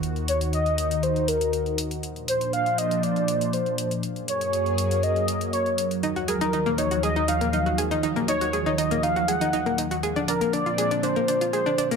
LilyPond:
<<
  \new Staff \with { instrumentName = "Soft synth lead" } { \time 4/4 \key ees \dorian \tempo 4 = 120 r8 des''8 ees''4 c''8 bes'4 r8 | r8 c''8 f''8 ees''8 d''4 c''8. r16 | r8 des''4. ees''4 des''8. r16 | r8 bes'4 des''8 ees''8 f''4 r8 |
r8 des''4 ees''8 f''8 ges''4 r8 | r8 bes'8 d''4 c''4 c''8. r16 | }
  \new Staff \with { instrumentName = "Synth arpeggio sound" } { \time 4/4 \key ees \dorian r1 | r1 | r1 | ees'16 ges'16 aes'16 ees'16 ees'16 bes16 ees'16 ges'16 aes'16 ees'16 ees'16 bes16 ees'16 ges'16 aes'16 ees'16 |
ees'16 bes16 ees'16 ges'16 aes'16 ees'16 ees'16 bes16 ees'16 ges'16 aes'16 ees'16 ees'16 bes16 ees'16 ges'16 | aes'16 d'16 d'16 bes16 d'16 f'16 aes'16 d'16 d'16 bes16 d'16 f'16 aes'16 d'16 d'16 bes16 | }
  \new Staff \with { instrumentName = "Analog synth pad" } { \clef bass \time 4/4 \key ees \dorian <ees, ees ees' ges'>1 | <bes, f d' c''>1 | <ges, ges bes aes'>1 | <ees, ees f>1~ |
<ees, ees f>1 | <bes, f c' d'>1 | }
  \new DrumStaff \with { instrumentName = "Drums" } \drummode { \time 4/4 hh16 hh16 hh16 hh16 hh16 hh16 hh16 hh16 hh16 hh16 hh16 hh16 hh16 hh16 hh16 hh16 | hh16 hh16 hh16 hh16 hh16 hh16 hh16 hh16 hh16 hh16 hh16 hh16 hh16 hh16 hh16 hh16 | hh16 hh16 hh16 hh16 hh16 hh16 hh16 hh16 hh16 hh16 hh16 hh16 hh16 hh16 hh16 hh16 | hh16 hh16 hh16 hh16 hh16 hh16 hh16 hh16 hh16 hh16 hh16 hh16 hh16 hh16 hh16 hh16 |
hh16 hh16 hh16 hh16 hh16 hh16 hh16 hh16 hh16 hh16 hh16 hh16 hh16 hh16 hh16 hh16 | hh16 hh16 hh16 hh16 hh16 hh16 hh16 hh16 hh16 hh16 hh16 hh16 hh16 hh16 hh16 hh16 | }
>>